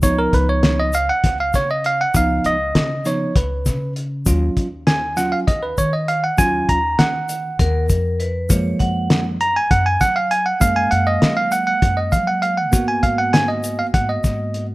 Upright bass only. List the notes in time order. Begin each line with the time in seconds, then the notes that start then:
0.03 C#2
0.33 C#2
1.24 C#2
1.54 C#3
2.15 C#2
2.45 C#2
2.75 C#3
3.36 C#2
3.66 C#3
4.26 D#2
4.57 D#2
5.47 D#2
5.78 D#3
6.39 D#2
6.69 D#2
6.99 D#3
7.59 D#2
7.90 F2
8.50 F#2
8.80 F#2
9.71 F#2
10.01 F#3
10.61 F#2
10.92 F#2
11.22 F#3
11.82 F#2
12.13 F#3
12.73 G#2
13.03 G#2
13.94 G#2
14.24 G#2